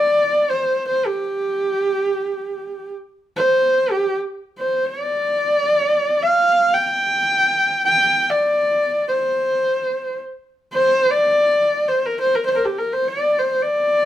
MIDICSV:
0, 0, Header, 1, 2, 480
1, 0, Start_track
1, 0, Tempo, 500000
1, 13489, End_track
2, 0, Start_track
2, 0, Title_t, "Horsehead fiddle"
2, 0, Program_c, 0, 110
2, 0, Note_on_c, 0, 74, 92
2, 482, Note_on_c, 0, 72, 73
2, 496, Note_off_c, 0, 74, 0
2, 842, Note_off_c, 0, 72, 0
2, 849, Note_on_c, 0, 72, 75
2, 1017, Note_on_c, 0, 67, 76
2, 1032, Note_off_c, 0, 72, 0
2, 2778, Note_off_c, 0, 67, 0
2, 3232, Note_on_c, 0, 72, 80
2, 3756, Note_on_c, 0, 67, 69
2, 3770, Note_off_c, 0, 72, 0
2, 4005, Note_off_c, 0, 67, 0
2, 4400, Note_on_c, 0, 72, 66
2, 4662, Note_on_c, 0, 74, 84
2, 4677, Note_off_c, 0, 72, 0
2, 5977, Note_on_c, 0, 77, 86
2, 5991, Note_off_c, 0, 74, 0
2, 6472, Note_on_c, 0, 79, 85
2, 6487, Note_off_c, 0, 77, 0
2, 7531, Note_off_c, 0, 79, 0
2, 7537, Note_on_c, 0, 79, 97
2, 7972, Note_on_c, 0, 74, 82
2, 7987, Note_off_c, 0, 79, 0
2, 8708, Note_off_c, 0, 74, 0
2, 8722, Note_on_c, 0, 72, 78
2, 9782, Note_off_c, 0, 72, 0
2, 10307, Note_on_c, 0, 72, 91
2, 10664, Note_on_c, 0, 74, 87
2, 10679, Note_off_c, 0, 72, 0
2, 11407, Note_on_c, 0, 72, 71
2, 11421, Note_off_c, 0, 74, 0
2, 11575, Note_on_c, 0, 70, 75
2, 11590, Note_off_c, 0, 72, 0
2, 11707, Note_off_c, 0, 70, 0
2, 11723, Note_on_c, 0, 72, 80
2, 11857, Note_on_c, 0, 70, 69
2, 11871, Note_off_c, 0, 72, 0
2, 11950, Note_off_c, 0, 70, 0
2, 11956, Note_on_c, 0, 72, 76
2, 12023, Note_off_c, 0, 72, 0
2, 12027, Note_on_c, 0, 72, 55
2, 12049, Note_on_c, 0, 70, 75
2, 12064, Note_off_c, 0, 72, 0
2, 12145, Note_on_c, 0, 67, 70
2, 12159, Note_off_c, 0, 70, 0
2, 12270, Note_on_c, 0, 70, 71
2, 12284, Note_off_c, 0, 67, 0
2, 12413, Note_on_c, 0, 72, 77
2, 12428, Note_off_c, 0, 70, 0
2, 12555, Note_on_c, 0, 74, 81
2, 12569, Note_off_c, 0, 72, 0
2, 12851, Note_on_c, 0, 72, 71
2, 12865, Note_off_c, 0, 74, 0
2, 13072, Note_on_c, 0, 74, 83
2, 13087, Note_off_c, 0, 72, 0
2, 13489, Note_off_c, 0, 74, 0
2, 13489, End_track
0, 0, End_of_file